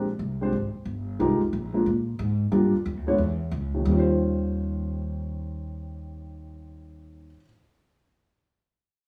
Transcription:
0, 0, Header, 1, 4, 480
1, 0, Start_track
1, 0, Tempo, 332963
1, 1714, Time_signature, 4, 2, 24, 8
1, 13075, End_track
2, 0, Start_track
2, 0, Title_t, "Upright piano"
2, 0, Program_c, 0, 0
2, 593, Note_on_c, 0, 56, 67
2, 594, Note_on_c, 0, 60, 63
2, 601, Note_on_c, 0, 62, 64
2, 602, Note_on_c, 0, 67, 53
2, 615, Note_on_c, 0, 72, 74
2, 742, Note_off_c, 0, 56, 0
2, 742, Note_off_c, 0, 60, 0
2, 746, Note_off_c, 0, 62, 0
2, 746, Note_off_c, 0, 67, 0
2, 753, Note_off_c, 0, 72, 0
2, 1720, Note_on_c, 0, 56, 69
2, 1724, Note_on_c, 0, 63, 65
2, 1730, Note_on_c, 0, 65, 62
2, 1734, Note_on_c, 0, 67, 62
2, 1744, Note_on_c, 0, 70, 79
2, 1995, Note_off_c, 0, 56, 0
2, 1997, Note_off_c, 0, 63, 0
2, 2000, Note_off_c, 0, 65, 0
2, 2002, Note_off_c, 0, 67, 0
2, 2008, Note_off_c, 0, 70, 0
2, 2500, Note_on_c, 0, 56, 60
2, 2508, Note_on_c, 0, 58, 59
2, 2514, Note_on_c, 0, 62, 51
2, 2515, Note_on_c, 0, 65, 55
2, 2518, Note_on_c, 0, 70, 59
2, 2655, Note_off_c, 0, 56, 0
2, 2659, Note_off_c, 0, 58, 0
2, 2662, Note_off_c, 0, 62, 0
2, 2663, Note_off_c, 0, 65, 0
2, 2664, Note_off_c, 0, 70, 0
2, 3626, Note_on_c, 0, 55, 70
2, 3628, Note_on_c, 0, 58, 54
2, 3628, Note_on_c, 0, 62, 60
2, 3636, Note_on_c, 0, 65, 66
2, 3644, Note_on_c, 0, 70, 67
2, 3908, Note_off_c, 0, 55, 0
2, 3909, Note_off_c, 0, 58, 0
2, 3909, Note_off_c, 0, 62, 0
2, 3913, Note_off_c, 0, 65, 0
2, 3917, Note_off_c, 0, 70, 0
2, 4423, Note_on_c, 0, 56, 67
2, 4426, Note_on_c, 0, 59, 54
2, 4433, Note_on_c, 0, 62, 61
2, 4433, Note_on_c, 0, 64, 62
2, 4440, Note_on_c, 0, 73, 77
2, 4576, Note_off_c, 0, 56, 0
2, 4578, Note_off_c, 0, 59, 0
2, 4581, Note_off_c, 0, 64, 0
2, 4582, Note_off_c, 0, 62, 0
2, 4585, Note_off_c, 0, 73, 0
2, 5396, Note_on_c, 0, 39, 64
2, 5462, Note_on_c, 0, 51, 56
2, 5539, Note_on_c, 0, 55, 60
2, 5614, Note_on_c, 0, 61, 53
2, 5678, Note_on_c, 0, 65, 59
2, 5755, Note_on_c, 0, 72, 70
2, 10446, Note_off_c, 0, 39, 0
2, 10513, Note_off_c, 0, 51, 0
2, 10589, Note_off_c, 0, 55, 0
2, 10664, Note_off_c, 0, 61, 0
2, 10728, Note_off_c, 0, 65, 0
2, 10806, Note_off_c, 0, 72, 0
2, 13075, End_track
3, 0, Start_track
3, 0, Title_t, "Upright bass"
3, 0, Program_c, 1, 32
3, 0, Note_on_c, 1, 34, 92
3, 261, Note_off_c, 1, 34, 0
3, 275, Note_on_c, 1, 36, 96
3, 740, Note_off_c, 1, 36, 0
3, 758, Note_on_c, 1, 32, 89
3, 1044, Note_off_c, 1, 32, 0
3, 1231, Note_on_c, 1, 31, 98
3, 1698, Note_off_c, 1, 31, 0
3, 1727, Note_on_c, 1, 36, 89
3, 1880, Note_on_c, 1, 32, 64
3, 1901, Note_off_c, 1, 36, 0
3, 2028, Note_off_c, 1, 32, 0
3, 2037, Note_on_c, 1, 29, 72
3, 2185, Note_off_c, 1, 29, 0
3, 2203, Note_on_c, 1, 34, 102
3, 2664, Note_off_c, 1, 34, 0
3, 2684, Note_on_c, 1, 46, 93
3, 3145, Note_off_c, 1, 46, 0
3, 3157, Note_on_c, 1, 44, 107
3, 3621, Note_off_c, 1, 44, 0
3, 3629, Note_on_c, 1, 43, 101
3, 3919, Note_off_c, 1, 43, 0
3, 4117, Note_on_c, 1, 41, 99
3, 4279, Note_off_c, 1, 41, 0
3, 4279, Note_on_c, 1, 38, 59
3, 4436, Note_off_c, 1, 38, 0
3, 4444, Note_on_c, 1, 34, 59
3, 4578, Note_off_c, 1, 34, 0
3, 4587, Note_on_c, 1, 40, 91
3, 5055, Note_off_c, 1, 40, 0
3, 5066, Note_on_c, 1, 37, 102
3, 5535, Note_off_c, 1, 37, 0
3, 5556, Note_on_c, 1, 39, 110
3, 10549, Note_off_c, 1, 39, 0
3, 13075, End_track
4, 0, Start_track
4, 0, Title_t, "Muted upright bass strokes"
4, 1076, Note_on_c, 9, 29, 38
4, 1220, Note_off_c, 9, 29, 0
4, 3947, Note_on_c, 9, 29, 45
4, 4091, Note_off_c, 9, 29, 0
4, 13075, End_track
0, 0, End_of_file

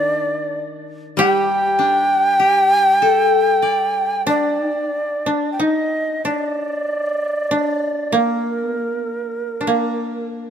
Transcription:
0, 0, Header, 1, 4, 480
1, 0, Start_track
1, 0, Tempo, 1214575
1, 472, Time_signature, 4, 2, 24, 8
1, 1436, Tempo, 1307190
1, 2396, Tempo, 1244813
1, 3356, Tempo, 1204819
1, 4058, End_track
2, 0, Start_track
2, 0, Title_t, "Shakuhachi"
2, 0, Program_c, 0, 77
2, 0, Note_on_c, 0, 74, 85
2, 234, Note_off_c, 0, 74, 0
2, 468, Note_on_c, 0, 79, 97
2, 1655, Note_off_c, 0, 79, 0
2, 1676, Note_on_c, 0, 74, 64
2, 2120, Note_off_c, 0, 74, 0
2, 2130, Note_on_c, 0, 79, 41
2, 2162, Note_on_c, 0, 75, 62
2, 2168, Note_off_c, 0, 79, 0
2, 2395, Note_off_c, 0, 75, 0
2, 2397, Note_on_c, 0, 74, 63
2, 3127, Note_on_c, 0, 70, 58
2, 3133, Note_off_c, 0, 74, 0
2, 3977, Note_off_c, 0, 70, 0
2, 4058, End_track
3, 0, Start_track
3, 0, Title_t, "Koto"
3, 0, Program_c, 1, 107
3, 0, Note_on_c, 1, 51, 54
3, 462, Note_on_c, 1, 55, 54
3, 707, Note_on_c, 1, 62, 37
3, 851, Note_off_c, 1, 51, 0
3, 947, Note_on_c, 1, 67, 35
3, 1193, Note_on_c, 1, 69, 35
3, 1432, Note_on_c, 1, 74, 34
3, 1669, Note_off_c, 1, 62, 0
3, 1772, Note_off_c, 1, 55, 0
3, 1913, Note_off_c, 1, 67, 0
3, 2160, Note_off_c, 1, 69, 0
3, 2394, Note_off_c, 1, 74, 0
3, 4058, End_track
4, 0, Start_track
4, 0, Title_t, "Koto"
4, 0, Program_c, 2, 107
4, 0, Note_on_c, 2, 62, 68
4, 469, Note_on_c, 2, 67, 78
4, 716, Note_off_c, 2, 62, 0
4, 1668, Note_on_c, 2, 62, 58
4, 1898, Note_off_c, 2, 67, 0
4, 2033, Note_off_c, 2, 62, 0
4, 2034, Note_on_c, 2, 62, 49
4, 2156, Note_on_c, 2, 63, 52
4, 2178, Note_off_c, 2, 62, 0
4, 2396, Note_on_c, 2, 62, 49
4, 2419, Note_off_c, 2, 63, 0
4, 2881, Note_off_c, 2, 62, 0
4, 2883, Note_on_c, 2, 62, 51
4, 3120, Note_on_c, 2, 58, 52
4, 3320, Note_off_c, 2, 58, 0
4, 3320, Note_on_c, 2, 59, 52
4, 3375, Note_off_c, 2, 59, 0
4, 3375, Note_on_c, 2, 58, 52
4, 3434, Note_off_c, 2, 58, 0
4, 3434, Note_on_c, 2, 59, 52
4, 3490, Note_off_c, 2, 59, 0
4, 3490, Note_on_c, 2, 58, 52
4, 3701, Note_off_c, 2, 62, 0
4, 3702, Note_on_c, 2, 62, 36
4, 3727, Note_off_c, 2, 58, 0
4, 3728, Note_on_c, 2, 58, 43
4, 4058, Note_off_c, 2, 58, 0
4, 4058, Note_off_c, 2, 62, 0
4, 4058, End_track
0, 0, End_of_file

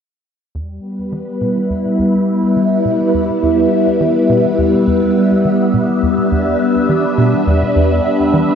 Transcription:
0, 0, Header, 1, 3, 480
1, 0, Start_track
1, 0, Tempo, 576923
1, 455, Time_signature, 4, 2, 24, 8
1, 7114, End_track
2, 0, Start_track
2, 0, Title_t, "String machine"
2, 0, Program_c, 0, 50
2, 456, Note_on_c, 0, 55, 84
2, 651, Note_on_c, 0, 59, 82
2, 672, Note_on_c, 0, 71, 64
2, 1107, Note_on_c, 0, 64, 86
2, 1842, Note_on_c, 0, 76, 81
2, 4929, Note_on_c, 0, 62, 83
2, 5071, Note_off_c, 0, 64, 0
2, 7114, Note_off_c, 0, 55, 0
2, 7114, Note_off_c, 0, 59, 0
2, 7114, Note_off_c, 0, 62, 0
2, 7114, Note_off_c, 0, 71, 0
2, 7114, Note_off_c, 0, 76, 0
2, 7114, End_track
3, 0, Start_track
3, 0, Title_t, "Analog synth bass"
3, 0, Program_c, 1, 38
3, 457, Note_on_c, 1, 40, 75
3, 662, Note_off_c, 1, 40, 0
3, 935, Note_on_c, 1, 52, 72
3, 1072, Note_off_c, 1, 52, 0
3, 1175, Note_on_c, 1, 47, 90
3, 1312, Note_off_c, 1, 47, 0
3, 1415, Note_on_c, 1, 40, 77
3, 1552, Note_off_c, 1, 40, 0
3, 1654, Note_on_c, 1, 40, 68
3, 1860, Note_off_c, 1, 40, 0
3, 2133, Note_on_c, 1, 52, 71
3, 2271, Note_off_c, 1, 52, 0
3, 2373, Note_on_c, 1, 47, 90
3, 2511, Note_off_c, 1, 47, 0
3, 2614, Note_on_c, 1, 40, 71
3, 2752, Note_off_c, 1, 40, 0
3, 2854, Note_on_c, 1, 40, 72
3, 3060, Note_off_c, 1, 40, 0
3, 3334, Note_on_c, 1, 52, 77
3, 3472, Note_off_c, 1, 52, 0
3, 3575, Note_on_c, 1, 47, 93
3, 3712, Note_off_c, 1, 47, 0
3, 3815, Note_on_c, 1, 40, 68
3, 3952, Note_off_c, 1, 40, 0
3, 4055, Note_on_c, 1, 40, 71
3, 4261, Note_off_c, 1, 40, 0
3, 4536, Note_on_c, 1, 52, 71
3, 4673, Note_off_c, 1, 52, 0
3, 4775, Note_on_c, 1, 47, 92
3, 4912, Note_off_c, 1, 47, 0
3, 5016, Note_on_c, 1, 40, 69
3, 5153, Note_off_c, 1, 40, 0
3, 5256, Note_on_c, 1, 40, 76
3, 5461, Note_off_c, 1, 40, 0
3, 5735, Note_on_c, 1, 52, 68
3, 5873, Note_off_c, 1, 52, 0
3, 5974, Note_on_c, 1, 47, 92
3, 6112, Note_off_c, 1, 47, 0
3, 6216, Note_on_c, 1, 40, 75
3, 6353, Note_off_c, 1, 40, 0
3, 6456, Note_on_c, 1, 40, 66
3, 6661, Note_off_c, 1, 40, 0
3, 6936, Note_on_c, 1, 52, 70
3, 7073, Note_off_c, 1, 52, 0
3, 7114, End_track
0, 0, End_of_file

